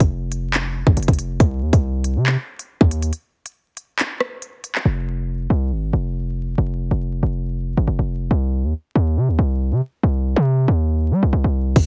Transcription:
0.00 F1, kick, closed hi-hat
0.32 closed hi-hat
0.54 clap, closed hi-hat
0.87 G#1, kick
0.97 F1, closed hi-hat
1.03 closed hi-hat
1.08 F1, kick, closed hi-hat
1.13 closed hi-hat
1.19 closed hi-hat
1.40 C2, kick, closed hi-hat
1.62 D#2
1.73 C2, kick, closed hi-hat
2.04 closed hi-hat
2.16 C3
2.26 clap
2.59 closed hi-hat
2.81 D#2, kick
2.91 closed hi-hat
3.02 closed hi-hat
3.13 closed hi-hat
3.46 closed hi-hat
3.77 closed hi-hat
3.99 clap, closed hi-hat
4.20 cross-stick
4.42 closed hi-hat
4.64 closed hi-hat
4.75 clap
4.85 F1
5.50 C2
5.72 G#1
5.93 F1
6.58 F1
6.91 F1
7.23 F1
7.77 G#1
7.87 F1
7.99 F1
8.31 C2
8.64 D#2
8.95 D#2
9.17 C3
9.28 D#2
9.39 C2
9.72 C3
10.03 C2
10.36 C3
10.68 D#2
11.11 G3
11.23 C2
11.33 C2
11.44 C2
11.76 F1, kick, closed hi-hat, crash

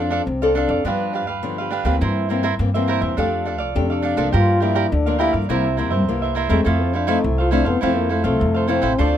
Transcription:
Already playing: F2 F3 C4 D4 A4
0.00 A4 D5 F5
0.10 D4 A4 D5 F5
0.26 C2 C3 C4
0.42 C4 D4 A4 D5 F5
0.55 D4 A4 D5 F5
0.69 F2 A4 D5 F5
0.84 G2 F3 B3 D4 G4 B4 F5
1.13 D4 G4 B4 F5
1.27 D2 G4 B4 F5
1.43 G2 D3 F3 B3 D4
1.58 G4 B4 F5
1.70 D4 G4 B4 F5
1.85 D2 E3 A#3 C4 D4 G4 B4 F5
2.01 G2 E4 A#4 C5 E5
2.29 E3 A#3 C4 E4 A#4 C5 E5
2.43 E4 A#4 C5 E5
2.59 G2 E3 A#3 C4
2.74 E3 A#3 C4 A#4 C5 E5
2.87 E4 A#4 C5 E5
3.01 E2 A#4 C5 E5
3.17 F2 F3 A3 D4 G4 A4 D5 F5
3.45 D4 A4 D5 F5
3.58 C2 A4 D5 F5
3.75 F2 C3 A3 D4 G4
3.90 A4 D5 F5
4.02 D4 A4 D5 F5
4.17 C2 F3 A#3 D4 A4 D5 F5
4.32 G2 F4 G4 A#4 D5 F5
4.60 F3 A#3 D4 E4 G4 A#4 D5 F5
4.75 G4 A#4 D5 F5
4.92 D2 D3 D4
5.06 F3 A#3 D4 A#4 D5 F5
5.19 E4 G4 A#4 D5 F5
5.33 G2 A#4 D5 F5
5.49 C2 C3 G3 A#3 E4 A#4 C5 E5
5.77 G3 A#3 E4 A#4 C5 E5
5.90 G2 A#4 C5 E5
6.08 C2 G2 G3 A#3 E4
6.22 A#4 C5 E5
6.35 E4 A#4 C5 E5
6.49 E2 G#3 A3 C4 E4 A#4 C5 E5
6.65 F2 F3 A3 E4 A4 C5 F5
6.83 C4
6.93 D4 E4 A4 C5 F5
7.07 A3 C4 D#4 E4 A4 C5 F5
7.24 C2 C3 E4
7.38 F4 A4 C5 F5
7.51 A3 C4 D4 E4 A4 C5 F5
7.65 F2 B3 A4 C5 F5
7.81 F2 F3 A3 C4 E4 A4 C5 F5
7.97 A#3
8.09 A3 E4 A4 C5 F5
8.24 C2 A3 C4 E4 A4 C5 F5
8.39 F2 C3
8.54 A4 C5 F5
8.67 A3 C4 E4 A4 C5 F5
8.81 A1 E4 A4 C5 F5
8.98 D2 D3 A3 C4 D4 F4 A4 C5 D5

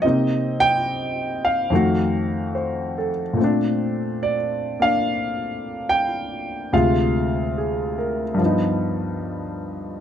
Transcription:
0.02 C3 A#3 C4 D#5
0.06 D#4
0.60 G5
1.45 F5
1.70 F2 D#3 A3
1.75 F#4
2.55 C5
2.98 A4
3.33 A#2 A3
3.41 C4 D4
4.23 D5
4.79 A#3 D4 F5
5.89 G5
6.73 D2 C3 G#3 F4 F5
7.58 G#4
7.98 A#4
8.34 G2 F3
8.42 B3
8.46 D#4

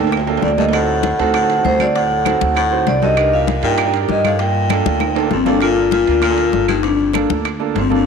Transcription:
Already playing: D2 A#2 A#3 D4 F4 A4 G5
0.07 high timbale
0.12 high bongo, high conga, claves
0.17 low timbale
0.27 A#3 D4 F4 A4, high bongo, high conga, low timbale
0.37 low timbale
0.42 D2 F2 D5, high bongo, low bongo, high conga
0.48 low timbale
0.57 G2 A#3 D4 F4 A4 D#5, high bongo, high conga, low timbale
0.69 low timbale
0.73 A2 C4 D#4 F#4 A4 F#5, high bongo, high conga, high timbale, claves
0.88 high bongo, high conga
1.03 high bongo, high conga, high timbale
1.19 D2 C4 D#4 F#4 A4, high timbale
1.34 A2 F#5, high bongo, high conga, high timbale, claves
1.41 C4 D#4 F#4 A4
1.50 high bongo, high conga, high timbale
1.57 C4 D#4 F#4 A4
1.64 D2 D#2 C5, high bongo, low bongo, high conga, low timbale
1.80 F#2 D5, high bongo, high conga, high timbale, claves
1.95 A2 F#5, high bongo, high conga, high timbale
2.11 high bongo, high conga
2.25 C4 D#4 F#4 A4, high bongo, high conga, high timbale, claves
2.41 D2, high conga
2.56 A2 F#5, high bongo, high conga, high timbale, claves
2.71 C4 D#4 F#4 C5, high bongo, high conga
2.86 C2 F#2 D5, high bongo, low bongo, high conga, high timbale
3.02 G2 C4 D#4 F#4 A4 D#5, high bongo, high conga
3.17 D4 D#4 G4 A#4, high bongo, high timbale, claves
3.32 A#2 F5, high bongo, high conga
3.47 high bongo, high conga, high timbale
3.63 G2 A#2 D4 D#4 G4 A#4 G5, high timbale
3.78 high bongo, high conga, high timbale, claves
3.86 D4 D#4 G4 A#4
3.94 high bongo, high conga, high timbale
4.01 D4 D#4 G4 A#4
4.09 G2 D#5, high bongo, low bongo, high conga
4.24 A2 F5, high bongo, high conga, high timbale, claves
4.39 A#2 G5, high bongo, high timbale
4.55 high bongo, high conga
4.70 A#3 D4 F4 A4, high bongo, high conga, high timbale, claves
4.85 D2, high conga
5.00 high bongo, high conga, high timbale, claves
5.15 A#3 D4 F4 A4, high conga, high timbale
5.31 G1 F2 C4, low bongo, high conga
5.45 F2 A#3 D4 F4 A4, low bongo, high conga, low timbale
5.61 A#2 A#3 D4 F4 A4, high bongo, high timbale, claves
5.76 high bongo, high conga
5.91 A#2 F4, high bongo, high conga, high timbale
6.07 D2 A#3 D4 F4 A#4, high timbale
6.22 A#2 F4, high bongo, high conga, high timbale, claves
6.29 A#3 D4 F4 A4
6.37 high bongo, high conga, high timbale
6.45 A#3 D4 F4 A4
6.53 G1, high bongo, low bongo, high conga
6.68 G2 D#4, high bongo, high conga, high timbale, claves
6.83 F2 D4, high bongo, high conga, high timbale
6.99 high bongo, high conga
7.13 A#3 D4 F4 A4, high bongo, high conga, high timbale, claves
7.29 D2, high conga
7.45 high bongo, high conga, high timbale, claves
7.59 A#3 D4 F4 A4, high bongo, high conga
7.75 G1 F2 C4, high bongo, low bongo, high conga, high timbale, low timbale
7.90 F2 A#3 D4 F4 A4, high bongo, high conga

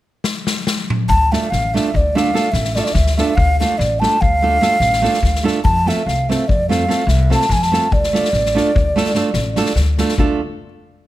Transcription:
0.24 snare
0.47 snare
0.67 snare
0.90 mid tom
1.09 D2 A5, kick
1.32 A3 D4 F4 A4 E5, snare
1.50 A1 F5, snare
1.74 A3 D4 F4 A4 E5, snare
1.94 D2 D5, kick
2.15 A3 D4 F4 A4 F5, snare
2.34 A3 D4 F4 A4, snare
2.52 A1 E5, snare
2.64 snare
2.75 A3 D4 F4 A4 D5, snare
2.80 E5
2.85 D5, snare
2.93 D2 E5, kick, snare
3.07 snare
3.16 A3 D4 F4 A4 E5, snare
3.35 D2 F5, kick
3.60 A3 D4 F4 A4 F5, snare
3.78 A1 D5, snare
3.99 A3 D4 F4 A5, snare
4.04 A4
4.21 D2 F5, kick
4.42 A3 D4 F4 A4
4.61 A3 D4 F4 A4, snare
4.80 A1, snare
4.93 snare
5.02 A3 D4 F4 A4, snare
5.14 snare
5.23 D2, kick, snare
5.35 snare
5.43 A3 D4 F4 A4, snare
5.64 F2 A5, kick
5.86 A3 C4 F4 A4 E5, snare
6.06 C2 F5, snare
6.29 A3 C4 F4 A4 E5, snare
6.48 F2 D5, kick
6.69 A3 C4 F4 A4 F5, snare
6.88 A3 C4 F4 A4, snare
7.07 C2 E5, snare
7.30 A3 C4 F4 A4 A5, snare
7.41 snare
7.49 F2 G#5, kick, snare
7.62 A5, snare
7.72 A3 C4 F4 A4, snare
7.91 D2 D5, kick
8.03 snare
8.13 A3 D4 F4 A4, snare
8.25 snare
8.33 A1, snare
8.46 snare
8.55 A3 D4 F4 A4, snare
8.75 D2, kick
8.96 A3 D4 F4 A4, snare
9.05 snare
9.15 A3 D4 F4 A4, snare
9.33 A1, snare
9.56 A3 D4 F4 A4, snare
9.66 snare
9.75 D2, snare
9.98 A3 D4 F4 A4, snare
10.09 snare
10.17 D2 A3 D4 F4 A4, kick

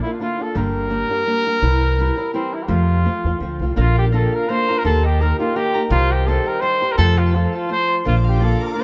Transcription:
0.02 D4 E4 F4
0.07 A#3
0.20 D3 A#3 D4 F4
0.39 A#3 D4 F4 A4
0.55 G1 G2 D3 G3 A#3 D4 G4 A#4
0.90 G3 A#3 D4 G4
1.09 G3 A#3 D4 G4
1.26 G3 A#3 D4 G4
1.46 G3 A#3 D4 G4
1.62 C2 C3 E3 G3 C4 E4
1.99 E3 G3 C4 E4
2.17 G3 C4 E4
2.34 E3 G3 C4 E4
2.54 E4
2.63 G4
2.68 F2 C3 F3 A3 C4 F4
3.05 F3 A3 C4 F4
3.24 E2 F3 A3 C4 F4
3.40 D2 F3 A3 C4 F4
3.59 C2 F3 A3 C4 F4
3.76 A#1 A#2 D3 A#3 D4 F4 A#4
3.80 F4
3.96 G4 D5
4.12 D3 A#3 D4 F4 A4 A#4
4.32 A#4 F5
4.49 D3 A#3 D4 F4 A#4 C5
4.68 A#3 D4 F4 A#5
4.78 A#4
4.84 D#2 D#3 A#3 D#4 G4 A4 A#4
5.04 G4 D#5
5.21 D#3 A#3 D#4 G4 A#4
5.39 A#3 D#4 F4 G4 G5
5.56 D#3 A#3 D#4 G4 A#4
5.74 A#3 D#4 G4 A#5
5.90 C2 C3 D#3 G3 C4 F4 G4 C5
6.10 G4 D#5
6.27 D#3 G3 C4 G4 A4 C5
6.46 A#4 G5
6.60 D#3 G3 C4 G4 C5
6.82 G3 C4 G4 C6
6.92 A#4
6.97 F2 C3 F3 A3 C4 F4 A4 C5
7.18 F4 F5
7.33 F3 A3 C4 F4 A4 C5
7.53 F4 A5
7.69 F3 A3 C4 F4 C5
7.88 C6
8.05 A#1 A#2 D3 A#3 D4 F4 A#4 D5 F5 D6
8.24 F5
8.29 G4
8.40 D3 A#3 D4 F4 A4 D5
8.61 A#4 A#5
8.67 A4
8.72 D3 A#3 A#4 D5
8.76 D4 F4 C5

